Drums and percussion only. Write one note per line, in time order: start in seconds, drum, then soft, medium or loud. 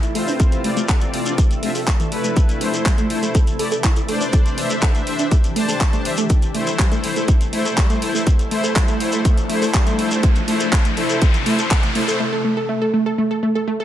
0.02 closed hi-hat soft
0.02 shekere soft
0.15 open hi-hat loud
0.28 shekere medium
0.40 kick loud
0.40 closed hi-hat medium
0.40 shekere medium
0.52 closed hi-hat soft
0.52 shekere soft
0.64 open hi-hat loud
0.77 closed hi-hat soft
0.77 shekere medium
0.88 kick loud
0.88 clap loud
0.88 closed hi-hat medium
0.88 shekere medium
1.01 closed hi-hat soft
1.01 shekere soft
1.14 open hi-hat loud
1.26 closed hi-hat soft
1.26 shekere medium
1.38 kick loud
1.38 closed hi-hat medium
1.38 shekere medium
1.51 closed hi-hat soft
1.51 shekere soft
1.63 open hi-hat loud
1.75 open hi-hat medium
1.75 shekere medium
1.87 kick loud
1.87 clap loud
1.87 closed hi-hat medium
1.87 shekere medium
2.00 closed hi-hat soft
2.00 shekere soft
2.12 open hi-hat loud
2.24 closed hi-hat soft
2.24 shekere medium
2.36 kick loud
2.36 closed hi-hat medium
2.36 shekere medium
2.49 closed hi-hat soft
2.49 shekere soft
2.61 open hi-hat loud
2.74 closed hi-hat soft
2.74 shekere medium
2.86 kick loud
2.86 clap loud
2.86 closed hi-hat medium
2.86 shekere medium
2.98 closed hi-hat soft
2.98 shekere soft
3.10 open hi-hat loud
3.23 closed hi-hat soft
3.23 shekere medium
3.35 kick loud
3.35 closed hi-hat medium
3.35 shekere medium
3.47 closed hi-hat soft
3.47 shekere soft
3.59 open hi-hat loud
3.71 closed hi-hat soft
3.71 shekere medium
3.84 kick loud
3.84 clap loud
3.84 closed hi-hat medium
3.84 shekere medium
3.96 closed hi-hat soft
3.96 shekere soft
4.09 open hi-hat loud
4.21 shekere medium
4.33 kick loud
4.33 closed hi-hat medium
4.33 shekere medium
4.46 closed hi-hat soft
4.46 shekere soft
4.58 open hi-hat loud
4.70 closed hi-hat soft
4.70 shekere medium
4.82 kick loud
4.82 clap loud
4.82 closed hi-hat medium
4.82 shekere medium
4.95 closed hi-hat soft
4.95 shekere soft
5.07 open hi-hat loud
5.19 closed hi-hat soft
5.19 shekere medium
5.31 kick loud
5.31 closed hi-hat medium
5.31 shekere medium
5.44 closed hi-hat soft
5.44 shekere soft
5.56 open hi-hat loud
5.69 open hi-hat medium
5.69 shekere medium
5.81 kick loud
5.81 clap loud
5.81 closed hi-hat medium
5.81 shekere medium
5.93 closed hi-hat soft
5.93 shekere soft
6.05 open hi-hat loud
6.17 closed hi-hat soft
6.17 shekere medium
6.30 kick loud
6.30 closed hi-hat medium
6.30 shekere medium
6.42 closed hi-hat soft
6.42 shekere soft
6.55 open hi-hat loud
6.67 closed hi-hat soft
6.67 shekere medium
6.79 kick loud
6.79 clap loud
6.79 closed hi-hat medium
6.79 shekere medium
6.92 closed hi-hat soft
6.92 shekere soft
7.04 open hi-hat loud
7.16 closed hi-hat soft
7.16 shekere medium
7.28 kick loud
7.28 closed hi-hat medium
7.28 shekere medium
7.41 closed hi-hat soft
7.41 shekere soft
7.53 open hi-hat loud
7.65 closed hi-hat soft
7.65 shekere medium
7.77 kick loud
7.77 clap loud
7.77 closed hi-hat medium
7.77 shekere medium
7.90 closed hi-hat soft
7.90 shekere soft
8.02 open hi-hat loud
8.15 shekere medium
8.27 kick loud
8.27 closed hi-hat medium
8.27 shekere medium
8.39 closed hi-hat soft
8.39 shekere soft
8.51 open hi-hat loud
8.64 closed hi-hat soft
8.64 shekere medium
8.76 kick loud
8.76 clap loud
8.76 closed hi-hat medium
8.76 shekere medium
8.88 closed hi-hat soft
8.88 shekere soft
9.00 open hi-hat loud
9.12 closed hi-hat soft
9.12 shekere medium
9.25 kick loud
9.25 closed hi-hat medium
9.25 shekere medium
9.37 closed hi-hat soft
9.37 shekere soft
9.50 open hi-hat loud
9.62 open hi-hat medium
9.62 shekere medium
9.74 kick loud
9.74 clap loud
9.74 closed hi-hat medium
9.74 shekere medium
9.87 closed hi-hat soft
9.87 shekere soft
9.99 open hi-hat loud
10.11 closed hi-hat soft
10.11 shekere medium
10.23 kick loud
10.23 closed hi-hat loud
10.23 shekere medium
10.35 closed hi-hat soft
10.35 shekere soft
10.48 open hi-hat loud
10.60 closed hi-hat soft
10.60 shekere medium
10.72 kick loud
10.72 clap loud
10.72 closed hi-hat medium
10.72 shekere medium
10.85 closed hi-hat soft
10.85 shekere soft
10.97 open hi-hat loud
11.10 closed hi-hat soft
11.10 shekere medium
11.22 kick loud
11.22 closed hi-hat medium
11.22 shekere medium
11.34 closed hi-hat soft
11.34 shekere soft
11.46 open hi-hat loud
11.59 closed hi-hat soft
11.59 shekere medium
11.71 kick loud
11.71 clap loud
11.71 closed hi-hat loud
11.71 shekere medium
11.83 closed hi-hat soft
11.83 shekere soft
11.95 open hi-hat loud
12.08 shekere medium